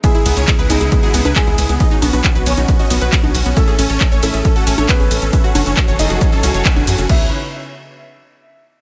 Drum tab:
CC |----------------|----------------|----------------|----------------|
RD |--x---x---x---x-|--x---x---x---x-|--x---x---x---x-|--x---x---x---x-|
HH |xxoxxxoxxxoxxxox|xxoxxxoxxxoxxxox|xxoxxxoxxxoxxxox|xxoxxxoxxxoxxxox|
SH |x-xxxxxxx-xxx-xx|x-xxxxxxx-xxx-xx|x-xxxxxxx-xxx-xx|x-xxxxxxx-xxx-xx|
CP |----x-------x---|----x-------x---|----x-------x---|----x-------x---|
CG |-----------o----|--oo---------o--|-----------o----|--oo---------o--|
BD |o---o---o---o---|o---o---o---o---|o---o---o---o---|o---o---o---o---|

CC |x---------------|
RD |----------------|
HH |----------------|
SH |----------------|
CP |----------------|
CG |----------------|
BD |o---------------|